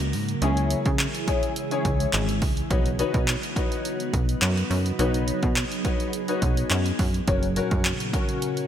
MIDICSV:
0, 0, Header, 1, 5, 480
1, 0, Start_track
1, 0, Key_signature, 5, "major"
1, 0, Tempo, 571429
1, 354, Time_signature, 4, 2, 24, 8
1, 7284, End_track
2, 0, Start_track
2, 0, Title_t, "Grand piano"
2, 0, Program_c, 0, 0
2, 351, Note_on_c, 0, 61, 93
2, 353, Note_on_c, 0, 64, 81
2, 355, Note_on_c, 0, 68, 81
2, 356, Note_on_c, 0, 73, 96
2, 741, Note_off_c, 0, 61, 0
2, 742, Note_off_c, 0, 64, 0
2, 743, Note_off_c, 0, 68, 0
2, 743, Note_off_c, 0, 73, 0
2, 1070, Note_on_c, 0, 61, 88
2, 1072, Note_on_c, 0, 64, 81
2, 1073, Note_on_c, 0, 68, 81
2, 1075, Note_on_c, 0, 73, 95
2, 1266, Note_off_c, 0, 61, 0
2, 1267, Note_off_c, 0, 64, 0
2, 1268, Note_off_c, 0, 68, 0
2, 1269, Note_off_c, 0, 73, 0
2, 1438, Note_on_c, 0, 61, 86
2, 1439, Note_on_c, 0, 64, 76
2, 1441, Note_on_c, 0, 68, 80
2, 1442, Note_on_c, 0, 73, 95
2, 1884, Note_off_c, 0, 61, 0
2, 1885, Note_off_c, 0, 64, 0
2, 1886, Note_off_c, 0, 68, 0
2, 1886, Note_off_c, 0, 73, 0
2, 2270, Note_on_c, 0, 63, 93
2, 2272, Note_on_c, 0, 66, 82
2, 2273, Note_on_c, 0, 71, 85
2, 2274, Note_on_c, 0, 73, 99
2, 2406, Note_off_c, 0, 63, 0
2, 2407, Note_off_c, 0, 66, 0
2, 2408, Note_off_c, 0, 71, 0
2, 2408, Note_off_c, 0, 73, 0
2, 2510, Note_on_c, 0, 63, 90
2, 2512, Note_on_c, 0, 66, 84
2, 2513, Note_on_c, 0, 71, 86
2, 2515, Note_on_c, 0, 73, 101
2, 2768, Note_off_c, 0, 63, 0
2, 2769, Note_off_c, 0, 66, 0
2, 2770, Note_off_c, 0, 71, 0
2, 2770, Note_off_c, 0, 73, 0
2, 2990, Note_on_c, 0, 63, 88
2, 2991, Note_on_c, 0, 66, 81
2, 2994, Note_on_c, 0, 71, 81
2, 2994, Note_on_c, 0, 73, 95
2, 3504, Note_off_c, 0, 63, 0
2, 3505, Note_off_c, 0, 66, 0
2, 3506, Note_off_c, 0, 71, 0
2, 3506, Note_off_c, 0, 73, 0
2, 4189, Note_on_c, 0, 63, 87
2, 4191, Note_on_c, 0, 66, 83
2, 4192, Note_on_c, 0, 71, 80
2, 4193, Note_on_c, 0, 73, 97
2, 4580, Note_off_c, 0, 63, 0
2, 4581, Note_off_c, 0, 66, 0
2, 4582, Note_off_c, 0, 71, 0
2, 4582, Note_off_c, 0, 73, 0
2, 4909, Note_on_c, 0, 63, 86
2, 4911, Note_on_c, 0, 66, 84
2, 4912, Note_on_c, 0, 71, 83
2, 4913, Note_on_c, 0, 73, 97
2, 5106, Note_off_c, 0, 63, 0
2, 5107, Note_off_c, 0, 66, 0
2, 5107, Note_off_c, 0, 71, 0
2, 5108, Note_off_c, 0, 73, 0
2, 5277, Note_on_c, 0, 63, 88
2, 5280, Note_on_c, 0, 66, 82
2, 5281, Note_on_c, 0, 71, 78
2, 5282, Note_on_c, 0, 73, 96
2, 5724, Note_off_c, 0, 63, 0
2, 5725, Note_off_c, 0, 66, 0
2, 5726, Note_off_c, 0, 71, 0
2, 5726, Note_off_c, 0, 73, 0
2, 6110, Note_on_c, 0, 61, 91
2, 6112, Note_on_c, 0, 66, 81
2, 6114, Note_on_c, 0, 70, 80
2, 6114, Note_on_c, 0, 73, 101
2, 6246, Note_off_c, 0, 61, 0
2, 6247, Note_off_c, 0, 66, 0
2, 6248, Note_off_c, 0, 70, 0
2, 6248, Note_off_c, 0, 73, 0
2, 6352, Note_on_c, 0, 61, 88
2, 6354, Note_on_c, 0, 66, 82
2, 6355, Note_on_c, 0, 70, 85
2, 6356, Note_on_c, 0, 73, 105
2, 6609, Note_off_c, 0, 61, 0
2, 6610, Note_off_c, 0, 66, 0
2, 6610, Note_off_c, 0, 70, 0
2, 6611, Note_off_c, 0, 73, 0
2, 6833, Note_on_c, 0, 61, 91
2, 6834, Note_on_c, 0, 66, 82
2, 6835, Note_on_c, 0, 70, 81
2, 6836, Note_on_c, 0, 73, 102
2, 7284, Note_off_c, 0, 61, 0
2, 7284, Note_off_c, 0, 66, 0
2, 7284, Note_off_c, 0, 70, 0
2, 7284, Note_off_c, 0, 73, 0
2, 7284, End_track
3, 0, Start_track
3, 0, Title_t, "Ambient pad"
3, 0, Program_c, 1, 92
3, 0, Note_on_c, 1, 49, 80
3, 0, Note_on_c, 1, 54, 74
3, 0, Note_on_c, 1, 58, 76
3, 0, Note_on_c, 1, 66, 92
3, 0, Note_on_c, 1, 70, 95
3, 320, Note_off_c, 1, 66, 0
3, 334, Note_off_c, 1, 54, 0
3, 334, Note_off_c, 1, 58, 0
3, 334, Note_off_c, 1, 70, 0
3, 356, Note_on_c, 1, 56, 76
3, 356, Note_on_c, 1, 68, 89
3, 357, Note_on_c, 1, 52, 77
3, 358, Note_on_c, 1, 64, 73
3, 2256, Note_off_c, 1, 52, 0
3, 2256, Note_off_c, 1, 56, 0
3, 2256, Note_off_c, 1, 64, 0
3, 2256, Note_off_c, 1, 68, 0
3, 2276, Note_on_c, 1, 54, 73
3, 2276, Note_on_c, 1, 59, 78
3, 2278, Note_on_c, 1, 63, 74
3, 2280, Note_on_c, 1, 66, 96
3, 4177, Note_off_c, 1, 66, 0
3, 4192, Note_on_c, 1, 68, 92
3, 6080, Note_off_c, 1, 49, 0
3, 6081, Note_off_c, 1, 59, 0
3, 6082, Note_off_c, 1, 63, 0
3, 6094, Note_off_c, 1, 68, 0
3, 6111, Note_on_c, 1, 49, 79
3, 6112, Note_on_c, 1, 46, 81
3, 6112, Note_on_c, 1, 61, 74
3, 6112, Note_on_c, 1, 66, 91
3, 7284, Note_off_c, 1, 46, 0
3, 7284, Note_off_c, 1, 49, 0
3, 7284, Note_off_c, 1, 54, 0
3, 7284, Note_off_c, 1, 61, 0
3, 7284, Note_off_c, 1, 66, 0
3, 7284, End_track
4, 0, Start_track
4, 0, Title_t, "Analog synth bass"
4, 0, Program_c, 2, 38
4, 0, Note_on_c, 2, 37, 110
4, 112, Note_on_c, 2, 44, 95
4, 124, Note_off_c, 2, 37, 0
4, 296, Note_off_c, 2, 44, 0
4, 352, Note_on_c, 2, 37, 104
4, 633, Note_off_c, 2, 37, 0
4, 721, Note_on_c, 2, 49, 92
4, 904, Note_off_c, 2, 49, 0
4, 1553, Note_on_c, 2, 37, 98
4, 1737, Note_off_c, 2, 37, 0
4, 1794, Note_on_c, 2, 32, 113
4, 2033, Note_on_c, 2, 37, 96
4, 2046, Note_off_c, 2, 32, 0
4, 2217, Note_off_c, 2, 37, 0
4, 2272, Note_on_c, 2, 35, 98
4, 2553, Note_off_c, 2, 35, 0
4, 2639, Note_on_c, 2, 47, 93
4, 2823, Note_off_c, 2, 47, 0
4, 3474, Note_on_c, 2, 35, 101
4, 3657, Note_off_c, 2, 35, 0
4, 3711, Note_on_c, 2, 42, 109
4, 3895, Note_off_c, 2, 42, 0
4, 3951, Note_on_c, 2, 42, 96
4, 4136, Note_off_c, 2, 42, 0
4, 4193, Note_on_c, 2, 35, 105
4, 4474, Note_off_c, 2, 35, 0
4, 4559, Note_on_c, 2, 47, 93
4, 4743, Note_off_c, 2, 47, 0
4, 5393, Note_on_c, 2, 35, 104
4, 5577, Note_off_c, 2, 35, 0
4, 5631, Note_on_c, 2, 42, 110
4, 5815, Note_off_c, 2, 42, 0
4, 5874, Note_on_c, 2, 42, 94
4, 6057, Note_off_c, 2, 42, 0
4, 6113, Note_on_c, 2, 30, 109
4, 6394, Note_off_c, 2, 30, 0
4, 6479, Note_on_c, 2, 42, 89
4, 6663, Note_off_c, 2, 42, 0
4, 7284, End_track
5, 0, Start_track
5, 0, Title_t, "Drums"
5, 0, Note_on_c, 9, 42, 57
5, 84, Note_off_c, 9, 42, 0
5, 111, Note_on_c, 9, 46, 80
5, 195, Note_off_c, 9, 46, 0
5, 240, Note_on_c, 9, 42, 49
5, 324, Note_off_c, 9, 42, 0
5, 351, Note_on_c, 9, 42, 103
5, 435, Note_off_c, 9, 42, 0
5, 479, Note_on_c, 9, 42, 55
5, 563, Note_off_c, 9, 42, 0
5, 592, Note_on_c, 9, 42, 79
5, 676, Note_off_c, 9, 42, 0
5, 718, Note_on_c, 9, 42, 46
5, 720, Note_on_c, 9, 36, 102
5, 802, Note_off_c, 9, 42, 0
5, 804, Note_off_c, 9, 36, 0
5, 831, Note_on_c, 9, 42, 94
5, 834, Note_on_c, 9, 39, 120
5, 915, Note_off_c, 9, 42, 0
5, 918, Note_off_c, 9, 39, 0
5, 962, Note_on_c, 9, 42, 58
5, 1046, Note_off_c, 9, 42, 0
5, 1072, Note_on_c, 9, 36, 94
5, 1073, Note_on_c, 9, 42, 74
5, 1156, Note_off_c, 9, 36, 0
5, 1157, Note_off_c, 9, 42, 0
5, 1200, Note_on_c, 9, 42, 53
5, 1284, Note_off_c, 9, 42, 0
5, 1312, Note_on_c, 9, 42, 89
5, 1396, Note_off_c, 9, 42, 0
5, 1439, Note_on_c, 9, 42, 51
5, 1523, Note_off_c, 9, 42, 0
5, 1553, Note_on_c, 9, 36, 89
5, 1554, Note_on_c, 9, 42, 80
5, 1637, Note_off_c, 9, 36, 0
5, 1638, Note_off_c, 9, 42, 0
5, 1682, Note_on_c, 9, 42, 62
5, 1766, Note_off_c, 9, 42, 0
5, 1791, Note_on_c, 9, 39, 110
5, 1791, Note_on_c, 9, 42, 92
5, 1875, Note_off_c, 9, 39, 0
5, 1875, Note_off_c, 9, 42, 0
5, 1921, Note_on_c, 9, 42, 56
5, 2005, Note_off_c, 9, 42, 0
5, 2031, Note_on_c, 9, 46, 79
5, 2032, Note_on_c, 9, 36, 91
5, 2115, Note_off_c, 9, 46, 0
5, 2116, Note_off_c, 9, 36, 0
5, 2159, Note_on_c, 9, 42, 49
5, 2243, Note_off_c, 9, 42, 0
5, 2273, Note_on_c, 9, 36, 126
5, 2273, Note_on_c, 9, 42, 98
5, 2357, Note_off_c, 9, 36, 0
5, 2357, Note_off_c, 9, 42, 0
5, 2399, Note_on_c, 9, 42, 57
5, 2483, Note_off_c, 9, 42, 0
5, 2513, Note_on_c, 9, 42, 80
5, 2597, Note_off_c, 9, 42, 0
5, 2639, Note_on_c, 9, 36, 105
5, 2639, Note_on_c, 9, 42, 46
5, 2723, Note_off_c, 9, 36, 0
5, 2723, Note_off_c, 9, 42, 0
5, 2752, Note_on_c, 9, 42, 97
5, 2755, Note_on_c, 9, 39, 120
5, 2836, Note_off_c, 9, 42, 0
5, 2839, Note_off_c, 9, 39, 0
5, 2884, Note_on_c, 9, 42, 59
5, 2968, Note_off_c, 9, 42, 0
5, 2992, Note_on_c, 9, 36, 93
5, 2995, Note_on_c, 9, 42, 72
5, 3076, Note_off_c, 9, 36, 0
5, 3079, Note_off_c, 9, 42, 0
5, 3123, Note_on_c, 9, 42, 50
5, 3207, Note_off_c, 9, 42, 0
5, 3235, Note_on_c, 9, 42, 88
5, 3319, Note_off_c, 9, 42, 0
5, 3360, Note_on_c, 9, 42, 52
5, 3444, Note_off_c, 9, 42, 0
5, 3473, Note_on_c, 9, 36, 89
5, 3474, Note_on_c, 9, 42, 82
5, 3557, Note_off_c, 9, 36, 0
5, 3558, Note_off_c, 9, 42, 0
5, 3602, Note_on_c, 9, 42, 58
5, 3686, Note_off_c, 9, 42, 0
5, 3711, Note_on_c, 9, 42, 89
5, 3712, Note_on_c, 9, 39, 110
5, 3795, Note_off_c, 9, 42, 0
5, 3796, Note_off_c, 9, 39, 0
5, 3842, Note_on_c, 9, 42, 53
5, 3926, Note_off_c, 9, 42, 0
5, 3954, Note_on_c, 9, 46, 82
5, 4038, Note_off_c, 9, 46, 0
5, 4080, Note_on_c, 9, 42, 50
5, 4164, Note_off_c, 9, 42, 0
5, 4194, Note_on_c, 9, 42, 100
5, 4278, Note_off_c, 9, 42, 0
5, 4320, Note_on_c, 9, 42, 57
5, 4404, Note_off_c, 9, 42, 0
5, 4433, Note_on_c, 9, 42, 81
5, 4517, Note_off_c, 9, 42, 0
5, 4558, Note_on_c, 9, 42, 46
5, 4559, Note_on_c, 9, 36, 103
5, 4642, Note_off_c, 9, 42, 0
5, 4643, Note_off_c, 9, 36, 0
5, 4670, Note_on_c, 9, 42, 95
5, 4673, Note_on_c, 9, 39, 117
5, 4754, Note_off_c, 9, 42, 0
5, 4757, Note_off_c, 9, 39, 0
5, 4801, Note_on_c, 9, 42, 57
5, 4885, Note_off_c, 9, 42, 0
5, 4912, Note_on_c, 9, 36, 98
5, 4912, Note_on_c, 9, 42, 75
5, 4996, Note_off_c, 9, 36, 0
5, 4996, Note_off_c, 9, 42, 0
5, 5040, Note_on_c, 9, 42, 48
5, 5124, Note_off_c, 9, 42, 0
5, 5151, Note_on_c, 9, 42, 93
5, 5235, Note_off_c, 9, 42, 0
5, 5277, Note_on_c, 9, 42, 53
5, 5361, Note_off_c, 9, 42, 0
5, 5393, Note_on_c, 9, 36, 89
5, 5393, Note_on_c, 9, 42, 83
5, 5477, Note_off_c, 9, 36, 0
5, 5477, Note_off_c, 9, 42, 0
5, 5521, Note_on_c, 9, 42, 64
5, 5605, Note_off_c, 9, 42, 0
5, 5631, Note_on_c, 9, 42, 91
5, 5632, Note_on_c, 9, 39, 114
5, 5715, Note_off_c, 9, 42, 0
5, 5716, Note_off_c, 9, 39, 0
5, 5760, Note_on_c, 9, 42, 57
5, 5844, Note_off_c, 9, 42, 0
5, 5873, Note_on_c, 9, 36, 93
5, 5873, Note_on_c, 9, 46, 78
5, 5957, Note_off_c, 9, 36, 0
5, 5957, Note_off_c, 9, 46, 0
5, 6000, Note_on_c, 9, 42, 51
5, 6084, Note_off_c, 9, 42, 0
5, 6111, Note_on_c, 9, 42, 103
5, 6113, Note_on_c, 9, 36, 127
5, 6195, Note_off_c, 9, 42, 0
5, 6197, Note_off_c, 9, 36, 0
5, 6238, Note_on_c, 9, 42, 59
5, 6322, Note_off_c, 9, 42, 0
5, 6352, Note_on_c, 9, 42, 86
5, 6436, Note_off_c, 9, 42, 0
5, 6478, Note_on_c, 9, 42, 43
5, 6480, Note_on_c, 9, 36, 102
5, 6562, Note_off_c, 9, 42, 0
5, 6564, Note_off_c, 9, 36, 0
5, 6591, Note_on_c, 9, 42, 97
5, 6593, Note_on_c, 9, 39, 118
5, 6675, Note_off_c, 9, 42, 0
5, 6677, Note_off_c, 9, 39, 0
5, 6722, Note_on_c, 9, 42, 60
5, 6806, Note_off_c, 9, 42, 0
5, 6833, Note_on_c, 9, 36, 96
5, 6835, Note_on_c, 9, 42, 75
5, 6917, Note_off_c, 9, 36, 0
5, 6919, Note_off_c, 9, 42, 0
5, 6961, Note_on_c, 9, 42, 52
5, 7045, Note_off_c, 9, 42, 0
5, 7074, Note_on_c, 9, 42, 93
5, 7158, Note_off_c, 9, 42, 0
5, 7199, Note_on_c, 9, 42, 51
5, 7283, Note_off_c, 9, 42, 0
5, 7284, End_track
0, 0, End_of_file